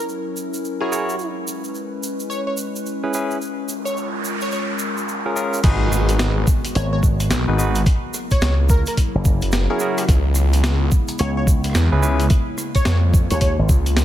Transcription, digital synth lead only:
0.80 1.26 G#4 loud
2.30 2.41 C#5 medium
2.47 2.54 C#5 medium
3.85 4.07 C#5 medium
4.42 4.49 C#5 medium
4.53 4.64 C#5 medium
6.75 6.86 C#5 medium
6.93 6.99 C#5 medium
8.32 8.53 C#5 medium
8.70 8.81 A#4 medium
8.88 8.94 A#4 medium
9.70 10.15 G#4 loud
11.19 11.31 C#5 medium
11.37 11.44 C#5 medium
12.75 12.97 C#5 medium
13.31 13.38 C#5 medium
13.41 13.53 C#5 medium

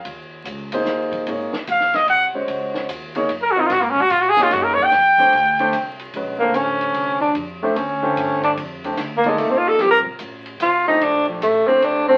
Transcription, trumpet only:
1.71 1.97 F5 medium
1.95 2.08 D#5 medium
2.10 2.25 F#5 loud
3.42 3.53 A#4 medium
3.51 3.61 F#4 loud
3.60 3.68 D#4 medium
3.66 3.73 F4 medium
3.72 3.84 F#4 loud
3.82 3.92 A#3 medium
3.90 4.03 C#4 loud
4.01 4.12 F#4 loud
4.11 4.23 F4 medium
4.21 4.31 F#4 medium
4.29 4.44 G#4 loud
4.43 4.54 F4 medium
4.52 4.65 F#4 medium
4.63 4.75 A#4 medium
4.74 4.85 C#5 medium
4.84 5.86 G5 loud

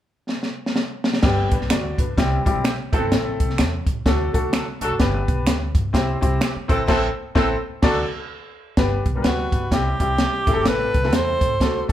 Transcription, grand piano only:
1.23 1.80 G3 medium
1.23 1.81 B3 medium
1.23 1.52 D4 medium
1.23 1.52 G4 medium
1.53 1.70 D4 soft
1.53 1.70 B4 medium
1.71 1.98 F#4 medium
1.71 1.98 D5 medium
1.99 2.44 D4 medium
1.99 2.44 B4 medium
2.17 2.40 G3 medium
2.17 2.40 C4 medium
2.17 2.40 E4 medium
2.17 2.41 G4 medium
2.45 2.70 G3 medium
2.45 2.70 C4 medium
2.45 2.70 E4 medium
2.45 2.70 G4 medium
2.92 3.64 A3 medium
2.92 2.97 B3 medium
2.92 3.65 E4 medium
2.92 3.65 A4 medium
2.98 3.67 C4 medium
4.06 4.28 A3 medium
4.06 4.28 D4 medium
4.06 4.28 F#4 medium
4.06 4.29 A4 medium
4.33 4.57 A3 medium
4.33 4.58 D4 medium
4.33 4.58 F#4 medium
4.33 4.58 A4 medium
4.81 4.92 A3 medium
4.81 4.93 D4 medium
4.81 4.93 F#4 medium
4.81 4.93 A4 medium
4.99 5.57 B3 medium
4.99 5.57 D4 medium
4.99 5.57 G4 medium
4.99 5.58 B4 medium
5.93 6.16 C4 medium
5.93 6.16 E4 medium
5.93 6.17 G4 medium
5.93 6.17 C5 medium
6.21 6.46 C4 medium
6.21 6.46 E4 medium
6.21 6.46 G4 medium
6.21 6.46 C5 medium
6.68 6.86 C4 medium
6.68 6.86 E4 medium
6.68 6.87 A4 medium
6.68 6.87 C5 loud
6.87 7.07 C4 medium
6.87 7.07 E4 loud
6.87 7.08 A4 loud
6.87 7.08 C5 medium
7.35 7.54 C4 medium
7.35 7.54 E4 medium
7.35 7.55 A4 loud
7.35 7.55 C5 loud
7.82 8.02 D4 medium
7.82 8.02 F#4 medium
7.82 8.02 A4 medium
7.82 8.02 D5 medium
8.77 9.02 B3 medium
8.77 9.03 D4 medium
8.77 9.03 G4 medium
8.77 9.03 B4 medium
9.15 9.64 G3 medium
9.15 9.64 B3 medium
9.15 9.64 D4 medium
9.15 9.20 A#4 medium
9.22 9.67 B4 medium
9.71 9.94 G3 medium
9.71 9.94 C4 medium
9.71 9.94 E4 medium
9.71 9.95 G4 medium
9.99 10.40 G3 medium
9.99 10.41 C4 medium
9.99 10.41 E4 medium
9.99 10.41 G4 medium
10.47 10.94 A3 medium
10.47 10.94 C4 medium
10.47 10.95 E4 medium
10.47 10.52 G#4 medium
10.54 10.98 A4 medium
11.03 11.52 A3 medium
11.03 11.53 C4 medium
11.03 11.53 E4 medium
11.03 11.53 A4 medium
11.60 11.83 A3 medium
11.60 11.83 D4 medium
11.60 11.83 F#4 medium
11.60 11.84 A4 medium
11.88 11.92 A3 medium
11.88 11.92 D4 medium

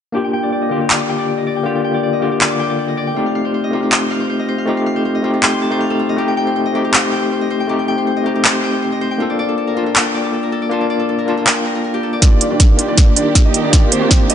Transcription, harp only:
0.14 0.71 G4 medium
0.24 0.33 G5 medium
0.33 1.08 G5 loud
0.43 0.52 D5 medium
0.52 0.68 D5 medium
0.62 0.96 D#5 medium
0.71 0.80 G4 medium
0.81 1.65 G4 medium
0.90 1.18 D5 medium
1.00 1.43 D6 medium
1.09 1.56 G5 medium
1.19 1.27 D5 medium
1.28 1.43 D5 medium
1.37 1.53 D#5 medium
1.47 1.94 D5 medium
1.56 1.75 G5 medium
1.65 2.22 G4 medium
1.75 1.84 G5 medium
1.84 2.59 G5 medium
1.94 2.03 D5 medium
2.03 2.19 D5 medium
2.13 2.47 D#5 medium
2.22 2.31 G4 loud
2.32 4.67 G4 medium
2.41 2.69 D5 medium
2.50 2.94 D6 medium
2.60 3.07 G5 medium
2.69 2.78 D5 medium
2.78 2.94 D5 medium
2.88 3.03 D#5 medium
2.97 3.70 D5 loud
3.07 4.62 G5 medium
3.16 3.73 F4 loud
3.26 3.35 F5 medium
3.35 4.10 F5 loud
3.45 3.54 C5 medium
3.54 3.91 C5 medium
3.64 4.39 D#5 medium
3.73 3.82 F4 loud
3.83 4.67 F4 medium
3.92 4.20 C5 medium
4.02 5.32 C6 medium
4.11 4.58 F5 medium
4.20 4.29 C5 medium
4.30 4.48 C5 medium
4.39 5.14 D#5 medium
4.48 4.96 C5 medium
4.58 4.77 F5 medium
4.67 5.24 F4 loud
4.77 4.86 F5 medium
4.86 5.80 F5 medium
4.96 5.05 C5 medium
5.05 5.42 C5 medium
5.15 6.09 D#5 medium
5.24 5.33 F4 loud
5.34 5.99 F4 medium
5.43 5.71 C5 loud
5.53 6.83 C6 medium
5.62 7.07 A5 medium
5.71 6.46 C5 medium
5.80 7.47 F5 medium
5.90 8.10 A4 medium
5.99 8.52 F4 medium
6.09 6.65 D#5 medium
6.18 6.74 G4 medium
6.28 6.37 G5 medium
6.37 7.12 G5 medium
6.47 6.55 C5 medium
6.56 6.93 C5 medium
6.66 7.41 D#5 medium
6.75 6.84 G4 loud
6.85 7.69 G4 medium
6.94 7.22 C5 medium
7.03 8.34 C6 medium
7.13 7.60 G5 medium
7.22 7.31 C5 medium
7.31 7.50 C5 medium
7.41 8.16 D#5 medium
7.50 7.97 C5 loud
7.60 7.79 G5 medium
7.69 8.25 G4 medium
7.79 7.88 G5 medium
7.88 8.63 G5 loud
7.98 8.06 C5 medium
8.07 8.44 C5 medium
8.17 8.92 D#5 medium
8.26 8.35 G4 loud
8.35 10.71 G4 medium
8.45 8.73 C5 loud
8.54 9.85 C6 medium
8.63 9.11 G5 medium
8.73 8.82 C5 medium
8.82 9.01 C5 medium
8.92 9.36 D#5 medium
9.01 10.99 C5 loud
9.11 10.05 G5 medium
9.20 9.76 F4 loud
9.30 9.39 D5 medium
9.39 10.14 D5 loud
9.49 9.57 A4 medium
9.58 9.73 A4 medium
9.67 10.02 A#4 medium
9.77 9.86 F4 loud
9.86 10.71 F4 medium
9.96 10.24 A4 medium
10.05 11.56 G5 medium
10.14 10.61 D5 loud
10.24 10.33 A4 medium
10.33 10.49 A4 medium
10.43 10.58 A#4 medium
10.52 10.99 A4 loud
10.62 10.80 D5 medium
10.71 11.27 F4 loud
10.81 10.89 D5 medium
10.90 12.12 D5 medium
11.00 11.08 A4 medium
11.09 11.24 A4 medium
11.18 11.53 A#4 medium
11.28 11.37 F4 loud
11.37 13.90 F4 medium
11.47 11.71 A4 medium
11.56 13.11 G5 medium
11.65 11.75 A#4 medium
11.75 11.84 A#4 loud
11.84 12.09 A#4 medium
11.94 14.29 G4 loud
12.03 14.23 A4 medium
12.13 13.98 D5 medium

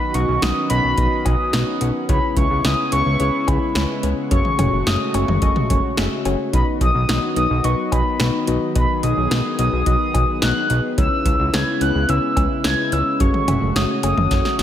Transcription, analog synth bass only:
0.14 0.25 B1 loud
0.28 0.39 B1 loud
0.42 0.53 B1 loud
0.70 0.81 B1 loud
0.84 0.94 B1 loud
0.98 1.08 B1 loud
1.26 1.36 B1 loud
1.53 1.64 B1 loud
1.81 1.92 B1 medium
2.09 2.19 C#2 loud
2.36 2.47 C#2 loud
2.51 2.61 C#2 loud
2.65 2.75 C#2 loud
2.92 3.03 C#2 loud
3.06 3.17 C#2 loud
3.20 3.30 C#2 loud
3.48 3.58 C#2 loud
3.75 3.86 C#2 loud
4.03 4.14 C#2 loud
4.31 4.42 F#1 loud
4.59 4.69 F#1 loud
4.73 4.83 F#1 loud
4.87 4.97 F#1 loud
5.14 5.25 F#1 loud
5.28 5.39 F#1 loud
5.42 5.53 F#1 loud
5.70 5.80 F#1 loud
5.98 6.08 F#1 loud
6.26 6.36 F#1 loud
6.53 6.64 B1 loud
6.81 6.91 B1 loud
6.95 7.05 B1 loud
7.09 7.19 B1 loud
7.36 7.47 B1 loud
7.50 7.61 B1 loud
7.64 7.75 B1 loud
7.92 8.03 B1 loud
8.20 8.30 B1 loud
8.48 8.58 B1 loud
8.76 8.86 B1 loud
9.03 9.14 B1 loud
9.17 9.28 B1 loud
9.31 9.42 B1 loud
9.59 9.69 B1 loud
9.73 9.83 B1 loud
9.86 9.97 B1 loud
10.14 10.25 B1 loud
10.42 10.53 B1 loud
10.70 10.80 B1 loud
10.98 11.08 C#2 loud
11.25 11.36 C#2 loud
11.39 11.50 C#2 loud
11.53 11.64 C#2 loud
11.81 11.92 C#2 loud
11.95 12.06 C#2 loud
12.09 12.19 C#2 loud
12.37 12.47 C#2 loud
12.65 12.75 C#2 loud
12.92 13.03 C#2 loud
13.20 13.31 F#1 loud
13.48 13.58 F#1 loud
13.62 13.72 F#1 loud
13.76 13.86 F#1 loud
14.03 14.14 F#1 loud
14.17 14.28 F#1 loud
14.31 14.41 F#1 loud
14.59 14.63 F#1 loud

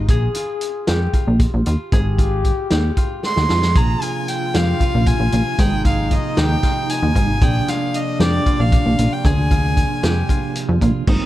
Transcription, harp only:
0.00 0.36 F4 medium
0.00 0.16 G4 medium
0.10 0.94 G#4 medium
0.36 1.14 F4 medium
0.88 1.99 G4 medium
1.14 1.66 F4 medium
1.67 2.18 F4 medium
1.93 2.77 G#4 medium
2.19 2.97 F4 medium
2.71 3.82 G4 medium
2.98 3.50 F4 medium
3.50 4.02 F4 medium
3.76 4.61 G#4 medium
4.03 4.81 F4 medium
4.55 5.66 G4 medium
4.81 5.33 F4 medium
5.33 5.86 F4 medium
5.60 6.44 G#4 medium
5.86 6.64 F4 medium
6.38 7.48 G4 medium
6.64 7.15 F4 medium
7.16 7.68 F4 medium
7.42 8.27 G#4 medium
7.68 8.46 F4 medium
8.21 9.31 G4 medium
8.46 8.99 F4 medium
8.99 9.51 F4 medium
9.25 10.10 G#4 medium
9.51 10.29 F4 medium
10.04 11.26 G4 medium
10.30 10.82 F4 medium
10.83 11.26 F4 medium
11.09 11.26 D#4 medium

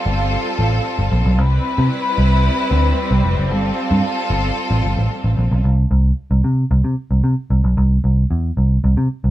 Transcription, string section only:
0.00 1.34 G3 medium
0.00 1.34 C4 medium
0.00 1.36 F4 medium
0.00 1.36 A4 medium
1.38 5.59 G3 medium
1.38 5.59 C4 medium
1.38 3.48 E4 medium
1.38 3.49 B4 medium
3.50 5.61 F4 medium
3.50 5.61 A4 medium

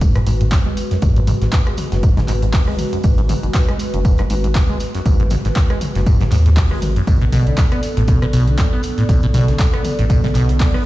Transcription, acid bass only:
0.01 0.13 G#2 medium
0.16 0.19 G#2 loud
0.27 0.31 G#2 medium
0.41 0.44 G#2 medium
0.66 0.75 G#3 medium
0.91 0.97 F#2 medium
1.02 1.14 G#2 medium
1.16 1.20 G#2 loud
1.27 1.32 G#2 loud
1.42 1.45 G#2 medium
1.67 1.76 G#3 medium
1.92 1.98 F#2 medium
2.03 2.15 G#2 medium
2.17 2.21 G#2 loud
2.28 2.33 G#2 loud
2.42 2.46 G#2 medium
2.68 2.77 G#3 medium
2.93 2.99 F#2 medium
3.04 3.16 G#2 medium
3.18 3.22 G#2 loud
3.29 3.34 G#2 loud
3.43 3.47 G#2 medium
3.68 3.78 G#3 medium
3.94 4.00 F#2 medium
4.05 4.16 G#2 medium
4.19 4.23 G#2 loud
4.30 4.35 G#2 medium
4.44 4.48 G#2 medium
4.69 4.78 G#3 medium
4.95 5.01 F#2 medium
5.06 5.17 G#2 medium
5.20 5.23 G#2 loud
5.31 5.36 G#2 loud
5.45 5.49 G#2 medium
5.70 5.79 G#3 medium
5.96 6.02 F#2 medium
6.07 6.18 G#2 medium
6.21 6.24 G#2 loud
6.32 6.36 G#2 loud
6.46 6.50 G#2 medium
6.71 6.80 G#3 medium
6.96 7.02 F#2 medium
7.07 7.19 B2 medium
7.22 7.25 B2 loud
7.32 7.48 B2 loud
7.47 7.56 D3 medium
7.72 7.81 B3 medium
7.97 8.03 A2 medium
8.08 8.20 B2 medium
8.22 8.26 B2 loud
8.33 8.49 B2 loud
8.48 8.57 D3 medium
8.73 8.82 B3 medium
8.98 9.04 A2 medium
9.09 9.21 B2 medium
9.23 9.27 B2 loud
9.34 9.50 B2 loud
9.48 9.57 D3 medium
9.73 9.83 B3 medium
9.99 10.05 A2 medium
10.10 10.21 B2 medium
10.24 10.28 B2 loud
10.35 10.51 B2 medium
10.49 10.58 D3 medium
10.74 10.83 B3 medium

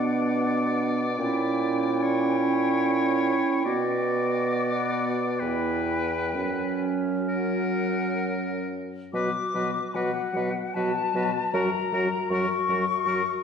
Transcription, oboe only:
0.00 2.05 D5 medium
2.03 3.65 C#5 medium
3.65 5.41 D5 medium
5.40 6.95 B4 medium
7.29 8.76 A#4 medium
9.15 9.31 B4 medium
9.55 9.71 B4 soft
9.96 10.12 B4 medium
10.36 10.52 B4 soft
10.76 10.92 B4 soft
11.16 11.32 B4 soft
11.54 11.70 A#4 medium
11.93 12.09 A#4 soft
12.33 12.49 A#4 medium
12.69 12.85 A#4 soft
13.07 13.23 A#4 medium

